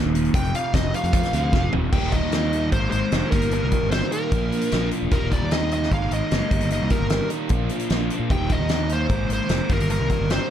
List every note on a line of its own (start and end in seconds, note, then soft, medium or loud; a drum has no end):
0.00 0.31 D#1 medium
0.00 0.13 D#2 medium
0.00 0.14 A#2 medium
0.00 0.14 D#3 medium
0.14 0.33 D#2 medium
0.14 0.33 A#2 medium
0.14 0.33 D#3 medium
0.14 closed hi-hat medium
0.25 closed hi-hat soft
0.34 0.52 F1 medium
0.34 0.52 F2 medium
0.34 0.53 C3 loud
0.34 0.54 F3 loud
0.34 0.54 G5 loud
0.34 kick loud
0.34 closed hi-hat loud
0.45 closed hi-hat soft
0.54 0.72 F2 medium
0.54 0.73 C3 medium
0.54 0.73 F3 medium
0.54 0.74 F5 medium
0.54 closed hi-hat medium
0.73 0.92 F1 loud
0.73 0.92 F2 medium
0.73 0.93 C3 medium
0.73 0.94 F3 medium
0.73 0.94 D#5 medium
0.73 kick loud
0.73 snare loud
0.73 closed hi-hat loud
0.93 1.11 F2 medium
0.93 1.12 C3 medium
0.93 1.12 F3 loud
0.93 1.72 F5 loud
0.93 closed hi-hat medium
1.04 1.22 F2 medium
1.04 closed hi-hat soft
1.13 1.32 F2 medium
1.13 1.33 C3 loud
1.13 1.34 F3 loud
1.13 kick loud
1.13 closed hi-hat loud
1.23 snare soft
1.23 closed hi-hat medium
1.33 1.51 D2 loud
1.33 1.52 F2 medium
1.33 1.52 C3 medium
1.33 1.53 F3 medium
1.33 closed hi-hat medium
1.53 1.71 F1 medium
1.53 1.72 F2 medium
1.53 1.73 C3 loud
1.53 1.73 F3 medium
1.53 kick loud
1.53 snare medium
1.73 1.91 D#1 medium
1.73 1.92 F2 medium
1.73 1.92 C3 medium
1.73 1.93 F3 medium
1.73 floor tom medium
1.93 2.02 D#1 loud
1.93 2.33 D#2 medium
1.93 2.33 A#2 medium
1.93 2.15 D#3 medium
1.93 2.14 G3 medium
1.93 2.14 A#3 medium
1.93 2.12 D#4 medium
1.93 2.13 G5 medium
1.93 kick loud
1.93 crash medium
2.03 2.21 D#1 medium
2.12 2.33 G3 medium
2.12 2.35 A#3 medium
2.12 2.35 D#4 medium
2.12 2.68 D#5 medium
2.12 kick medium
2.12 closed hi-hat medium
2.16 2.32 D#3 soft
2.23 2.69 D#2 medium
2.32 2.54 D#3 medium
2.32 2.53 G3 medium
2.32 2.53 A#3 medium
2.32 2.51 D#4 medium
2.32 snare loud
2.32 closed hi-hat medium
2.52 2.73 D#2 medium
2.52 2.72 A#2 medium
2.52 2.72 D#3 medium
2.52 2.72 G3 medium
2.52 2.74 A#3 medium
2.52 2.71 D#4 medium
2.52 closed hi-hat medium
2.72 2.91 G#1 loud
2.72 3.11 G#2 medium
2.72 3.12 D#3 medium
2.72 2.94 G#3 medium
2.72 2.93 A#3 medium
2.72 2.91 D#4 medium
2.72 2.90 C5 medium
2.72 kick loud
2.72 closed hi-hat medium
2.91 3.02 G#1 medium
2.91 3.14 A#3 medium
2.91 3.14 D#4 medium
2.91 3.31 C5 loud
2.91 closed hi-hat medium
2.95 3.13 G#3 medium
3.12 3.21 F1 medium
3.12 3.31 G#2 medium
3.12 3.32 D#3 medium
3.12 3.32 G#3 medium
3.12 3.32 A#3 medium
3.12 3.31 D#4 medium
3.12 snare loud
3.12 closed hi-hat medium
3.31 3.60 G1 medium
3.31 3.50 D#2 medium
3.31 3.51 A#2 medium
3.31 3.52 D#3 medium
3.31 3.52 G3 medium
3.31 3.53 A#3 medium
3.31 3.53 D#4 medium
3.31 3.52 A#4 medium
3.31 kick medium
3.31 closed hi-hat medium
3.42 closed hi-hat medium
3.51 3.92 D#2 medium
3.51 3.92 A#2 medium
3.51 3.73 D#3 medium
3.51 3.72 G3 medium
3.51 3.72 A#3 medium
3.51 3.70 D#4 medium
3.51 3.91 A#4 medium
3.51 closed hi-hat medium
3.63 3.72 C2 medium
3.71 3.90 D#3 medium
3.71 3.91 G3 medium
3.71 3.92 A#3 medium
3.71 3.93 D#4 medium
3.71 kick medium
3.71 closed hi-hat medium
3.83 4.01 G1 medium
3.91 4.12 D#3 medium
3.91 4.10 G3 medium
3.91 4.10 A#3 medium
3.91 4.09 D#4 medium
3.91 4.12 C5 medium
3.91 snare loud
3.91 closed hi-hat medium
4.10 4.32 D#2 medium
4.10 4.29 A#2 medium
4.10 4.31 D#3 medium
4.10 4.31 G3 medium
4.10 4.32 A#3 medium
4.10 4.30 D#4 medium
4.10 4.88 A#4 medium
4.10 closed hi-hat medium
4.30 4.50 A#1 medium
4.30 4.70 A#2 medium
4.30 4.71 F3 medium
4.30 4.53 A#3 medium
4.30 4.52 D4 medium
4.30 4.49 F4 medium
4.30 kick loud
4.30 closed hi-hat medium
4.51 4.72 A#3 medium
4.51 4.72 D4 medium
4.51 4.73 F4 medium
4.51 closed hi-hat medium
4.61 closed hi-hat medium
4.71 4.91 A#1 medium
4.71 5.10 A#2 medium
4.71 5.11 F3 medium
4.71 4.93 A#3 medium
4.71 4.91 D4 loud
4.71 4.90 F4 loud
4.71 snare loud
4.71 closed hi-hat medium
4.91 5.13 A#3 medium
4.91 5.11 D4 medium
4.91 5.10 F4 medium
4.91 closed hi-hat medium
5.02 5.11 E1 medium
5.11 5.21 D#1 medium
5.11 5.51 D#2 medium
5.11 5.52 A#2 medium
5.11 5.33 D#3 medium
5.11 5.32 G3 medium
5.11 5.31 A#3 loud
5.11 5.30 D#4 medium
5.11 5.33 A#4 medium
5.11 kick loud
5.11 closed hi-hat medium
5.22 5.40 D#1 medium
5.31 5.50 D#3 medium
5.31 5.52 G3 medium
5.31 5.53 A#3 medium
5.31 5.54 D#4 medium
5.31 5.52 D5 medium
5.31 kick medium
5.31 closed hi-hat medium
5.42 5.88 D#2 medium
5.51 5.73 D#3 medium
5.51 5.72 G3 medium
5.51 5.73 A#3 medium
5.51 5.71 D#4 medium
5.51 5.72 D#5 medium
5.51 snare loud
5.51 closed hi-hat medium
5.71 5.91 A#2 medium
5.71 5.91 D#3 medium
5.71 5.91 G3 medium
5.71 5.93 A#3 medium
5.71 5.91 D#4 medium
5.71 5.93 D#5 medium
5.71 closed hi-hat medium
5.76 5.92 D#2 medium
5.83 snare soft
5.91 6.10 G#1 loud
5.91 6.30 G#2 medium
5.91 6.30 D#3 medium
5.91 6.13 G#3 medium
5.91 6.12 A#3 medium
5.91 6.10 D#4 loud
5.91 6.13 F5 medium
5.91 kick loud
5.91 closed hi-hat medium
6.11 6.21 G#1 medium
6.11 6.31 G#3 medium
6.11 6.33 A#3 medium
6.11 6.33 D#4 medium
6.11 6.68 D#5 medium
6.11 closed hi-hat medium
6.31 6.41 F#1 medium
6.31 6.50 G#2 medium
6.31 6.50 D#3 medium
6.31 6.50 G#3 medium
6.31 6.50 A#3 medium
6.31 6.48 D#4 loud
6.31 snare loud
6.31 closed hi-hat medium
6.49 6.79 G1 medium
6.49 6.68 D#2 medium
6.49 6.69 A#2 medium
6.49 6.70 D#3 medium
6.49 6.70 G3 medium
6.49 6.72 A#3 medium
6.49 6.72 D#4 medium
6.49 kick loud
6.49 closed hi-hat medium
6.61 closed hi-hat medium
6.69 7.10 D#2 medium
6.69 7.11 A#2 medium
6.69 6.92 D#3 medium
6.69 6.91 G3 medium
6.69 6.91 A#3 medium
6.69 6.89 D#4 medium
6.69 6.90 D#5 medium
6.69 closed hi-hat medium
6.81 6.90 C2 medium
6.90 7.09 D#3 medium
6.90 7.10 G3 medium
6.90 7.12 A#3 medium
6.90 7.12 D#4 medium
6.90 7.28 A#4 medium
6.90 kick medium
6.90 closed hi-hat medium
7.00 7.19 G1 medium
7.10 7.31 D#3 medium
7.10 7.31 G3 medium
7.10 7.31 A#3 medium
7.10 7.29 D#4 medium
7.10 snare loud
7.10 closed hi-hat medium
7.30 7.51 D#2 medium
7.30 7.48 A#2 medium
7.30 7.50 D#3 medium
7.30 7.50 G3 medium
7.30 7.52 A#3 medium
7.30 7.49 D#4 medium
7.30 closed hi-hat medium
7.49 7.69 A#1 medium
7.49 7.89 A#2 medium
7.49 7.90 F3 medium
7.49 7.73 A#3 medium
7.49 7.70 D4 medium
7.49 7.69 F4 loud
7.49 kick loud
7.49 closed hi-hat medium
7.69 7.91 A#3 medium
7.69 7.91 D4 medium
7.69 7.92 F4 medium
7.69 closed hi-hat medium
7.80 closed hi-hat medium
7.90 8.09 A#1 medium
7.90 8.29 A#2 medium
7.90 8.29 F3 loud
7.90 8.13 A#3 medium
7.90 8.11 D4 medium
7.90 8.09 F4 loud
7.90 snare loud
7.90 closed hi-hat medium
8.10 8.31 A#3 medium
8.10 8.30 D4 medium
8.10 8.29 F4 medium
8.10 closed hi-hat medium
8.19 8.29 A#2 medium
8.30 8.39 D#1 loud
8.30 8.70 D#2 medium
8.30 8.70 A#2 medium
8.30 8.52 D#3 medium
8.30 8.50 G3 loud
8.30 8.50 A#3 medium
8.30 8.48 D#4 medium
8.30 8.52 G5 loud
8.30 kick loud
8.30 closed hi-hat medium
8.40 8.58 D#1 medium
8.49 8.68 D#3 medium
8.49 8.69 G3 medium
8.49 8.71 A#3 medium
8.49 8.71 D#4 medium
8.49 8.92 D#5 medium
8.49 kick medium
8.49 closed hi-hat medium
8.60 9.06 D#2 medium
8.69 8.91 D#3 medium
8.69 8.91 G3 medium
8.69 8.91 A#3 medium
8.69 8.89 D#4 medium
8.69 snare loud
8.69 closed hi-hat medium
8.89 9.10 D#2 medium
8.89 9.09 A#2 medium
8.89 9.09 D#3 medium
8.89 9.10 G3 medium
8.89 9.11 A#3 medium
8.89 9.09 D#4 medium
8.89 9.29 C5 loud
8.89 closed hi-hat medium
9.09 9.28 G#1 loud
9.09 9.48 G#2 medium
9.09 9.49 D#3 medium
9.09 9.31 G#3 medium
9.09 9.31 A#3 medium
9.09 9.28 D#4 medium
9.09 kick loud
9.09 closed hi-hat medium
9.29 9.39 G#1 medium
9.29 9.49 G#3 medium
9.29 9.51 A#3 medium
9.29 9.51 D#4 medium
9.29 closed hi-hat medium
9.33 9.73 C5 medium
9.49 9.59 F1 medium
9.49 9.68 G#2 medium
9.49 9.69 D#3 medium
9.49 9.69 G#3 medium
9.49 9.70 A#3 loud
9.49 9.68 D#4 loud
9.49 snare loud
9.49 closed hi-hat medium
9.69 9.97 G1 medium
9.69 9.88 D#2 medium
9.69 9.89 A#2 medium
9.69 9.90 D#3 medium
9.69 9.90 G3 medium
9.69 9.92 A#3 medium
9.69 9.91 D#4 medium
9.69 9.90 A#4 medium
9.69 kick loud
9.69 closed hi-hat medium
9.80 closed hi-hat medium
9.89 10.29 D#2 medium
9.89 10.30 A#2 medium
9.89 10.12 D#3 medium
9.89 10.11 G3 medium
9.89 10.11 A#3 medium
9.89 10.09 D#4 loud
9.89 10.31 A#4 medium
9.89 closed hi-hat medium
9.99 10.09 C2 medium
10.10 10.28 D#3 medium
10.10 10.30 G3 medium
10.10 10.32 A#3 medium
10.10 10.32 D#4 medium
10.10 kick medium
10.10 closed hi-hat medium
10.19 10.38 G1 medium
10.29 10.50 D#3 medium
10.29 10.49 G3 medium
10.29 10.50 A#3 medium
10.29 10.48 D#4 medium
10.29 10.50 C5 medium
10.29 snare loud
10.29 closed hi-hat medium